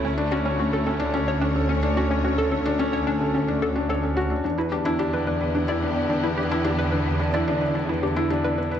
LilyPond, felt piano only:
\new Staff \with { instrumentName = "Felt piano" } { \time 4/4 \key d \major \tempo 4 = 109 cis'16 d'16 cis'16 cis''16 cis'16 a'16 cis'16 d'16 cis'16 cis''16 cis'16 a'16 cis'16 d'16 cis'16 cis''16 | cis'16 a'16 cis'16 d'16 cis'16 cis''16 cis'16 a'16 cis'16 d'16 fis'16 d'16 cis''16 cis'16 fis'16 d'16 | d'16 b'16 d'16 e'16 d'16 d''16 d'16 b'16 d'16 e'16 d'16 d''16 d'16 b'16 d'16 e'16 | d'16 d''16 d'16 b'16 d'16 e'16 d'16 d''16 d'16 b'16 d'16 e'16 d'16 d''16 d'16 b'16 | }